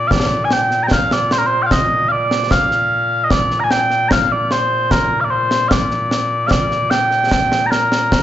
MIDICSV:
0, 0, Header, 1, 3, 480
1, 0, Start_track
1, 0, Key_signature, -2, "major"
1, 0, Tempo, 800000
1, 68, Time_signature, 2, 2, 24, 8
1, 4937, End_track
2, 0, Start_track
2, 0, Title_t, "Bagpipes"
2, 0, Program_c, 0, 109
2, 0, Note_on_c, 0, 46, 89
2, 46, Note_on_c, 0, 77, 96
2, 72, Note_off_c, 0, 77, 0
2, 72, Note_on_c, 0, 74, 96
2, 268, Note_off_c, 0, 74, 0
2, 268, Note_on_c, 0, 80, 72
2, 315, Note_off_c, 0, 80, 0
2, 315, Note_on_c, 0, 79, 98
2, 500, Note_off_c, 0, 79, 0
2, 500, Note_on_c, 0, 82, 73
2, 524, Note_off_c, 0, 82, 0
2, 524, Note_on_c, 0, 79, 73
2, 557, Note_off_c, 0, 79, 0
2, 557, Note_on_c, 0, 77, 92
2, 677, Note_off_c, 0, 77, 0
2, 677, Note_on_c, 0, 74, 92
2, 796, Note_off_c, 0, 74, 0
2, 796, Note_on_c, 0, 72, 86
2, 829, Note_off_c, 0, 72, 0
2, 829, Note_on_c, 0, 70, 74
2, 878, Note_off_c, 0, 70, 0
2, 878, Note_on_c, 0, 72, 86
2, 975, Note_off_c, 0, 72, 0
2, 975, Note_on_c, 0, 79, 78
2, 998, Note_off_c, 0, 79, 0
2, 998, Note_on_c, 0, 77, 78
2, 1033, Note_off_c, 0, 77, 0
2, 1033, Note_on_c, 0, 75, 94
2, 1251, Note_off_c, 0, 75, 0
2, 1251, Note_on_c, 0, 77, 101
2, 1271, Note_off_c, 0, 77, 0
2, 1271, Note_on_c, 0, 74, 101
2, 1508, Note_off_c, 0, 74, 0
2, 1508, Note_on_c, 0, 77, 92
2, 1945, Note_off_c, 0, 77, 0
2, 1945, Note_on_c, 0, 75, 77
2, 1988, Note_off_c, 0, 75, 0
2, 1988, Note_on_c, 0, 74, 97
2, 2159, Note_off_c, 0, 74, 0
2, 2159, Note_on_c, 0, 82, 72
2, 2184, Note_off_c, 0, 82, 0
2, 2184, Note_on_c, 0, 80, 72
2, 2226, Note_off_c, 0, 80, 0
2, 2226, Note_on_c, 0, 79, 102
2, 2452, Note_off_c, 0, 79, 0
2, 2452, Note_on_c, 0, 82, 91
2, 2472, Note_off_c, 0, 82, 0
2, 2472, Note_on_c, 0, 77, 91
2, 2593, Note_off_c, 0, 77, 0
2, 2593, Note_on_c, 0, 74, 79
2, 2712, Note_off_c, 0, 74, 0
2, 2712, Note_on_c, 0, 72, 90
2, 2948, Note_off_c, 0, 72, 0
2, 2948, Note_on_c, 0, 70, 86
2, 3125, Note_off_c, 0, 70, 0
2, 3125, Note_on_c, 0, 77, 65
2, 3148, Note_off_c, 0, 77, 0
2, 3148, Note_on_c, 0, 74, 65
2, 3184, Note_off_c, 0, 74, 0
2, 3184, Note_on_c, 0, 72, 88
2, 3412, Note_off_c, 0, 72, 0
2, 3412, Note_on_c, 0, 77, 82
2, 3432, Note_off_c, 0, 77, 0
2, 3432, Note_on_c, 0, 74, 82
2, 3883, Note_off_c, 0, 74, 0
2, 3883, Note_on_c, 0, 77, 89
2, 3907, Note_off_c, 0, 77, 0
2, 3907, Note_on_c, 0, 74, 89
2, 4143, Note_off_c, 0, 74, 0
2, 4143, Note_on_c, 0, 79, 109
2, 4599, Note_off_c, 0, 79, 0
2, 4599, Note_on_c, 0, 82, 78
2, 4625, Note_off_c, 0, 82, 0
2, 4625, Note_on_c, 0, 70, 78
2, 4937, Note_off_c, 0, 46, 0
2, 4937, Note_off_c, 0, 70, 0
2, 4937, End_track
3, 0, Start_track
3, 0, Title_t, "Drums"
3, 65, Note_on_c, 9, 35, 62
3, 65, Note_on_c, 9, 38, 93
3, 125, Note_off_c, 9, 35, 0
3, 125, Note_off_c, 9, 38, 0
3, 303, Note_on_c, 9, 38, 71
3, 363, Note_off_c, 9, 38, 0
3, 426, Note_on_c, 9, 38, 28
3, 486, Note_off_c, 9, 38, 0
3, 548, Note_on_c, 9, 35, 54
3, 548, Note_on_c, 9, 38, 104
3, 608, Note_off_c, 9, 35, 0
3, 608, Note_off_c, 9, 38, 0
3, 668, Note_on_c, 9, 38, 71
3, 728, Note_off_c, 9, 38, 0
3, 786, Note_on_c, 9, 38, 74
3, 846, Note_off_c, 9, 38, 0
3, 1026, Note_on_c, 9, 35, 60
3, 1026, Note_on_c, 9, 38, 91
3, 1086, Note_off_c, 9, 35, 0
3, 1086, Note_off_c, 9, 38, 0
3, 1387, Note_on_c, 9, 38, 70
3, 1447, Note_off_c, 9, 38, 0
3, 1505, Note_on_c, 9, 35, 54
3, 1505, Note_on_c, 9, 38, 94
3, 1565, Note_off_c, 9, 35, 0
3, 1565, Note_off_c, 9, 38, 0
3, 1627, Note_on_c, 9, 38, 27
3, 1687, Note_off_c, 9, 38, 0
3, 1983, Note_on_c, 9, 35, 56
3, 1983, Note_on_c, 9, 38, 88
3, 2043, Note_off_c, 9, 35, 0
3, 2043, Note_off_c, 9, 38, 0
3, 2104, Note_on_c, 9, 38, 27
3, 2164, Note_off_c, 9, 38, 0
3, 2224, Note_on_c, 9, 38, 73
3, 2284, Note_off_c, 9, 38, 0
3, 2343, Note_on_c, 9, 38, 28
3, 2403, Note_off_c, 9, 38, 0
3, 2465, Note_on_c, 9, 35, 57
3, 2465, Note_on_c, 9, 38, 100
3, 2525, Note_off_c, 9, 35, 0
3, 2525, Note_off_c, 9, 38, 0
3, 2704, Note_on_c, 9, 38, 66
3, 2764, Note_off_c, 9, 38, 0
3, 2946, Note_on_c, 9, 35, 61
3, 2946, Note_on_c, 9, 38, 89
3, 3006, Note_off_c, 9, 35, 0
3, 3006, Note_off_c, 9, 38, 0
3, 3306, Note_on_c, 9, 38, 68
3, 3366, Note_off_c, 9, 38, 0
3, 3425, Note_on_c, 9, 35, 56
3, 3425, Note_on_c, 9, 38, 97
3, 3485, Note_off_c, 9, 35, 0
3, 3485, Note_off_c, 9, 38, 0
3, 3545, Note_on_c, 9, 38, 26
3, 3605, Note_off_c, 9, 38, 0
3, 3668, Note_on_c, 9, 38, 71
3, 3728, Note_off_c, 9, 38, 0
3, 3905, Note_on_c, 9, 35, 57
3, 3905, Note_on_c, 9, 38, 92
3, 3965, Note_off_c, 9, 35, 0
3, 3965, Note_off_c, 9, 38, 0
3, 4027, Note_on_c, 9, 38, 28
3, 4087, Note_off_c, 9, 38, 0
3, 4146, Note_on_c, 9, 38, 72
3, 4206, Note_off_c, 9, 38, 0
3, 4267, Note_on_c, 9, 38, 28
3, 4327, Note_off_c, 9, 38, 0
3, 4389, Note_on_c, 9, 35, 54
3, 4389, Note_on_c, 9, 38, 102
3, 4449, Note_off_c, 9, 35, 0
3, 4449, Note_off_c, 9, 38, 0
3, 4510, Note_on_c, 9, 38, 69
3, 4570, Note_off_c, 9, 38, 0
3, 4630, Note_on_c, 9, 38, 69
3, 4690, Note_off_c, 9, 38, 0
3, 4751, Note_on_c, 9, 38, 72
3, 4811, Note_off_c, 9, 38, 0
3, 4872, Note_on_c, 9, 35, 64
3, 4872, Note_on_c, 9, 38, 101
3, 4932, Note_off_c, 9, 35, 0
3, 4932, Note_off_c, 9, 38, 0
3, 4937, End_track
0, 0, End_of_file